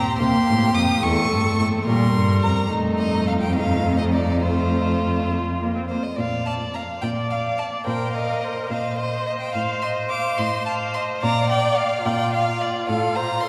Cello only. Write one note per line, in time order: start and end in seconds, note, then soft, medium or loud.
0.20 0.28 C3 soft
0.48 0.74 A2 soft
0.75 0.83 F2 soft
1.03 1.30 E2 medium
1.31 1.39 G2 soft
1.60 1.68 A2 soft
1.87 2.14 A#2 soft
2.14 2.42 G2 soft
2.43 2.51 F2 soft
2.71 5.93 F2 soft
6.18 6.91 A#2 soft
7.03 7.75 A#2 soft
7.87 8.58 A#2 soft
8.70 9.42 A#2 soft
9.55 10.27 A2 soft
10.39 11.10 A2 soft
11.23 11.93 A#2 medium
12.06 12.76 A#2 medium
12.89 13.49 A2 medium